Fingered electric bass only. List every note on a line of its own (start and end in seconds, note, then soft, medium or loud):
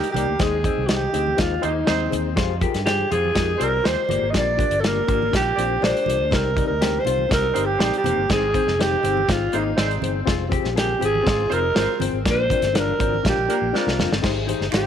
0.15 0.24 C2 medium
0.27 0.36 D2 medium
0.40 0.68 D#2 loud
0.78 1.06 C2 medium
1.14 1.32 D2 medium
1.39 1.57 D#2 medium
1.64 1.82 D#2 medium
1.89 2.07 D#2 medium
2.13 2.37 D#2 medium
2.37 2.66 F2 loud
2.75 3.03 G2 medium
3.12 3.30 F2 medium
3.35 3.54 F2 medium
3.61 3.79 C2 medium
3.86 3.95 D#2 medium
4.09 4.19 G1 medium
4.22 4.31 G#1 medium
4.35 4.63 A#1 medium
4.70 4.99 G1 medium
5.08 5.27 G#1 medium
5.34 5.52 A#1 medium
5.58 5.77 A#1 medium
5.83 5.92 A#1 medium
6.08 6.17 C2 medium
6.20 6.29 D2 medium
6.32 6.61 C2 medium
6.70 6.98 D2 medium
7.07 7.25 C2 medium
7.31 7.50 C2 medium
7.56 7.75 G1 medium
7.81 7.90 A#1 medium
8.05 8.14 F1 medium
8.17 8.27 G1 medium
8.30 8.58 G#1 loud
8.67 8.95 F1 medium
9.04 9.23 G1 medium
9.29 9.48 G#1 medium
9.54 9.72 G#1 medium
9.78 9.97 G#1 loud
10.02 10.21 G1 medium
10.28 10.56 F1 medium
10.65 10.93 A#1 medium
11.02 11.21 G#1 medium
11.27 11.46 G#1 medium
11.51 11.70 F1 medium
11.76 11.86 G#1 medium
12.01 12.10 G1 medium
12.13 12.22 G#1 medium
12.25 12.54 A#1 medium
12.62 12.91 G1 medium
13.00 13.19 G#1 medium
13.25 13.34 A#1 loud
13.37 13.47 A#1 medium
13.62 13.71 A#1 medium
13.87 13.96 C2 medium
14.00 14.09 F1 medium
14.12 14.21 G1 medium
14.24 14.52 G#1 loud
14.60 14.70 G1 medium
14.73 14.87 G#1 medium